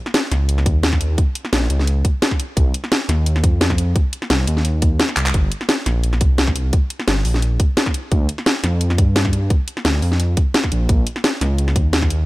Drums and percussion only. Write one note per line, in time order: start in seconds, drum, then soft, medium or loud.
0.06 snare soft
0.14 snare loud
0.14 closed hi-hat medium
0.32 snare soft
0.32 closed hi-hat medium
0.49 closed hi-hat medium
0.58 snare soft
0.66 kick loud
0.66 closed hi-hat medium
0.83 snare loud
0.83 closed hi-hat medium
0.93 kick medium
0.93 snare soft
1.01 closed hi-hat medium
1.18 kick loud
1.18 closed hi-hat medium
1.35 closed hi-hat medium
1.45 snare soft
1.53 snare loud
1.53 closed hi-hat medium
1.70 closed hi-hat medium
1.79 snare soft
1.87 closed hi-hat medium
2.05 kick loud
2.05 closed hi-hat medium
2.22 snare loud
2.22 closed hi-hat medium
2.31 kick medium
2.31 snare soft
2.40 closed hi-hat medium
2.57 kick loud
2.57 closed hi-hat medium
2.74 closed hi-hat medium
2.84 snare soft
2.92 snare loud
2.92 closed hi-hat medium
3.09 snare soft
3.09 closed hi-hat medium
3.26 closed hi-hat medium
3.36 snare soft
3.44 kick loud
3.44 closed hi-hat loud
3.61 snare loud
3.61 closed hi-hat medium
3.70 kick medium
3.70 snare soft
3.78 closed hi-hat medium
3.96 kick loud
3.96 closed hi-hat medium
4.13 closed hi-hat loud
4.22 snare soft
4.30 snare loud
4.30 closed hi-hat medium
4.47 closed hi-hat loud
4.57 snare soft
4.65 closed hi-hat medium
4.82 kick loud
4.82 closed hi-hat loud
5.00 snare loud
5.00 closed hi-hat medium
5.09 snare soft
5.17 clap medium
5.17 closed hi-hat loud
5.26 clap loud
5.34 kick loud
5.34 closed hi-hat medium
5.52 closed hi-hat loud
5.61 snare soft
5.69 snare loud
5.69 closed hi-hat medium
5.86 snare medium
5.86 closed hi-hat loud
6.04 closed hi-hat medium
6.13 snare soft
6.21 kick loud
6.21 closed hi-hat loud
6.38 snare loud
6.38 closed hi-hat medium
6.47 kick medium
6.47 snare soft
6.56 closed hi-hat loud
6.73 kick loud
6.73 closed hi-hat medium
6.90 closed hi-hat loud
7.00 snare soft
7.08 snare loud
7.08 closed hi-hat medium
7.25 open hi-hat medium
7.34 snare soft
7.42 closed hi-hat medium
7.60 kick loud
7.60 closed hi-hat medium
7.77 snare loud
7.77 closed hi-hat medium
7.86 kick medium
7.86 snare medium
7.94 closed hi-hat loud
8.12 kick loud
8.12 closed hi-hat medium
8.29 closed hi-hat medium
8.38 snare soft
8.46 snare loud
8.46 closed hi-hat medium
8.64 snare soft
8.64 closed hi-hat medium
8.81 closed hi-hat medium
8.90 snare soft
8.98 kick loud
8.98 closed hi-hat medium
9.16 snare loud
9.16 closed hi-hat medium
9.25 kick medium
9.25 snare soft
9.33 closed hi-hat medium
9.50 kick loud
9.50 closed hi-hat medium
9.68 closed hi-hat medium
9.77 snare soft
9.85 snare loud
9.85 closed hi-hat medium
10.02 open hi-hat medium
10.12 snare soft
10.20 closed hi-hat medium
10.37 kick loud
10.37 closed hi-hat medium
10.54 snare loud
10.54 closed hi-hat medium
10.64 kick medium
10.64 snare soft
10.72 closed hi-hat medium
10.89 kick loud
10.89 closed hi-hat medium
11.07 closed hi-hat medium
11.16 snare soft
11.24 snare loud
11.24 closed hi-hat medium
11.41 snare soft
11.41 closed hi-hat medium
11.58 closed hi-hat medium
11.68 snare soft
11.76 kick loud
11.76 closed hi-hat medium
11.93 snare loud
11.93 closed hi-hat medium
12.02 kick medium
12.02 snare soft
12.10 closed hi-hat medium